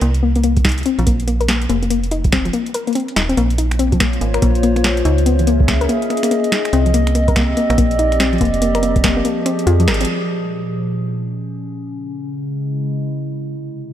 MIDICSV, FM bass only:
0, 0, Header, 1, 2, 480
1, 0, Start_track
1, 0, Tempo, 419580
1, 19, Time_signature, 4, 2, 24, 8
1, 15936, End_track
2, 0, Start_track
2, 0, Title_t, "FM bass"
2, 0, Program_c, 0, 39
2, 19, Note_on_c, 0, 36, 97
2, 949, Note_off_c, 0, 36, 0
2, 1128, Note_on_c, 0, 34, 102
2, 1910, Note_off_c, 0, 34, 0
2, 1939, Note_on_c, 0, 29, 100
2, 2869, Note_off_c, 0, 29, 0
2, 3620, Note_on_c, 0, 27, 78
2, 3822, Note_off_c, 0, 27, 0
2, 3860, Note_on_c, 0, 34, 96
2, 4790, Note_off_c, 0, 34, 0
2, 4819, Note_on_c, 0, 32, 85
2, 5022, Note_off_c, 0, 32, 0
2, 5059, Note_on_c, 0, 34, 92
2, 5749, Note_off_c, 0, 34, 0
2, 5779, Note_on_c, 0, 37, 98
2, 6709, Note_off_c, 0, 37, 0
2, 7700, Note_on_c, 0, 36, 100
2, 8630, Note_off_c, 0, 36, 0
2, 8807, Note_on_c, 0, 34, 99
2, 9589, Note_off_c, 0, 34, 0
2, 9619, Note_on_c, 0, 29, 100
2, 10549, Note_off_c, 0, 29, 0
2, 11058, Note_on_c, 0, 41, 85
2, 11298, Note_on_c, 0, 32, 96
2, 11316, Note_off_c, 0, 41, 0
2, 11502, Note_off_c, 0, 32, 0
2, 15936, End_track
0, 0, End_of_file